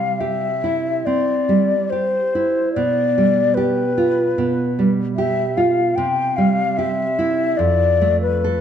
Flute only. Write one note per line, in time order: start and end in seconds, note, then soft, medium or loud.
0.00 0.21 F5 medium
0.20 1.07 E5 medium
1.06 1.91 D5 medium
1.90 2.73 C5 medium
2.73 3.56 D5 medium
3.54 4.90 B4 medium
5.16 5.59 E5 medium
5.57 5.97 F5 medium
5.96 6.38 G5 medium
6.37 6.79 F5 medium
6.77 7.59 E5 medium
7.57 8.21 D5 medium
8.22 8.61 B4 medium